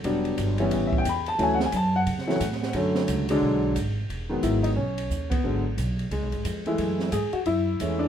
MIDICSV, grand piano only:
0, 0, Header, 1, 2, 480
1, 0, Start_track
1, 0, Tempo, 336889
1, 74, Time_signature, 4, 2, 24, 8
1, 11512, End_track
2, 0, Start_track
2, 0, Title_t, "Grand piano"
2, 0, Program_c, 0, 0
2, 60, Note_on_c, 0, 54, 68
2, 60, Note_on_c, 0, 55, 67
2, 69, Note_on_c, 0, 59, 66
2, 71, Note_on_c, 0, 62, 74
2, 786, Note_off_c, 0, 54, 0
2, 786, Note_off_c, 0, 55, 0
2, 791, Note_off_c, 0, 59, 0
2, 791, Note_off_c, 0, 62, 0
2, 846, Note_on_c, 0, 52, 75
2, 849, Note_on_c, 0, 55, 70
2, 852, Note_on_c, 0, 61, 89
2, 853, Note_on_c, 0, 59, 77
2, 1242, Note_on_c, 0, 76, 80
2, 1375, Note_off_c, 0, 76, 0
2, 1399, Note_on_c, 0, 79, 94
2, 1476, Note_off_c, 0, 52, 0
2, 1478, Note_off_c, 0, 55, 0
2, 1479, Note_off_c, 0, 61, 0
2, 1480, Note_off_c, 0, 59, 0
2, 1533, Note_off_c, 0, 79, 0
2, 1557, Note_on_c, 0, 83, 99
2, 1825, Note_on_c, 0, 81, 105
2, 1826, Note_off_c, 0, 83, 0
2, 1969, Note_on_c, 0, 54, 69
2, 1978, Note_on_c, 0, 52, 69
2, 1981, Note_on_c, 0, 57, 67
2, 1986, Note_on_c, 0, 61, 78
2, 1997, Note_off_c, 0, 81, 0
2, 2033, Note_on_c, 0, 80, 99
2, 2171, Note_off_c, 0, 80, 0
2, 2200, Note_on_c, 0, 78, 90
2, 2250, Note_off_c, 0, 54, 0
2, 2255, Note_off_c, 0, 52, 0
2, 2256, Note_off_c, 0, 57, 0
2, 2259, Note_off_c, 0, 61, 0
2, 2334, Note_off_c, 0, 78, 0
2, 2352, Note_on_c, 0, 80, 91
2, 2490, Note_off_c, 0, 80, 0
2, 2513, Note_on_c, 0, 81, 101
2, 2784, Note_off_c, 0, 81, 0
2, 2791, Note_on_c, 0, 78, 104
2, 3236, Note_on_c, 0, 54, 70
2, 3238, Note_on_c, 0, 57, 66
2, 3240, Note_on_c, 0, 52, 77
2, 3255, Note_on_c, 0, 61, 81
2, 3409, Note_off_c, 0, 54, 0
2, 3410, Note_off_c, 0, 57, 0
2, 3411, Note_off_c, 0, 52, 0
2, 3419, Note_off_c, 0, 61, 0
2, 3868, Note_off_c, 0, 78, 0
2, 3915, Note_on_c, 0, 50, 72
2, 3915, Note_on_c, 0, 54, 65
2, 3930, Note_on_c, 0, 57, 67
2, 3931, Note_on_c, 0, 61, 80
2, 4633, Note_off_c, 0, 50, 0
2, 4634, Note_off_c, 0, 54, 0
2, 4641, Note_off_c, 0, 57, 0
2, 4641, Note_off_c, 0, 61, 0
2, 4703, Note_on_c, 0, 50, 79
2, 4703, Note_on_c, 0, 54, 82
2, 4711, Note_on_c, 0, 56, 86
2, 4713, Note_on_c, 0, 62, 92
2, 5324, Note_off_c, 0, 50, 0
2, 5324, Note_off_c, 0, 54, 0
2, 5328, Note_off_c, 0, 56, 0
2, 5329, Note_off_c, 0, 62, 0
2, 6117, Note_on_c, 0, 51, 69
2, 6127, Note_on_c, 0, 56, 64
2, 6128, Note_on_c, 0, 54, 57
2, 6137, Note_on_c, 0, 59, 78
2, 6311, Note_on_c, 0, 64, 86
2, 6600, Note_on_c, 0, 63, 86
2, 6620, Note_off_c, 0, 64, 0
2, 6671, Note_off_c, 0, 63, 0
2, 6751, Note_off_c, 0, 51, 0
2, 6756, Note_off_c, 0, 56, 0
2, 6757, Note_off_c, 0, 54, 0
2, 6761, Note_off_c, 0, 59, 0
2, 6780, Note_on_c, 0, 61, 91
2, 7511, Note_off_c, 0, 61, 0
2, 7549, Note_on_c, 0, 59, 89
2, 7737, Note_off_c, 0, 59, 0
2, 7749, Note_on_c, 0, 50, 62
2, 7753, Note_on_c, 0, 54, 54
2, 7758, Note_on_c, 0, 59, 67
2, 7763, Note_on_c, 0, 56, 52
2, 8020, Note_off_c, 0, 50, 0
2, 8022, Note_off_c, 0, 54, 0
2, 8025, Note_off_c, 0, 59, 0
2, 8027, Note_off_c, 0, 56, 0
2, 8724, Note_on_c, 0, 56, 72
2, 9443, Note_off_c, 0, 56, 0
2, 9496, Note_on_c, 0, 52, 67
2, 9503, Note_on_c, 0, 56, 72
2, 9503, Note_on_c, 0, 57, 68
2, 9506, Note_on_c, 0, 64, 79
2, 10120, Note_off_c, 0, 52, 0
2, 10124, Note_off_c, 0, 56, 0
2, 10124, Note_off_c, 0, 57, 0
2, 10125, Note_off_c, 0, 64, 0
2, 10152, Note_on_c, 0, 68, 92
2, 10430, Note_off_c, 0, 68, 0
2, 10445, Note_on_c, 0, 66, 88
2, 10517, Note_off_c, 0, 66, 0
2, 10636, Note_on_c, 0, 64, 101
2, 11126, Note_on_c, 0, 52, 64
2, 11133, Note_on_c, 0, 56, 53
2, 11135, Note_on_c, 0, 57, 57
2, 11136, Note_on_c, 0, 61, 66
2, 11386, Note_on_c, 0, 62, 93
2, 11435, Note_off_c, 0, 64, 0
2, 11512, Note_off_c, 0, 52, 0
2, 11512, Note_off_c, 0, 56, 0
2, 11512, Note_off_c, 0, 57, 0
2, 11512, Note_off_c, 0, 61, 0
2, 11512, Note_off_c, 0, 62, 0
2, 11512, End_track
0, 0, End_of_file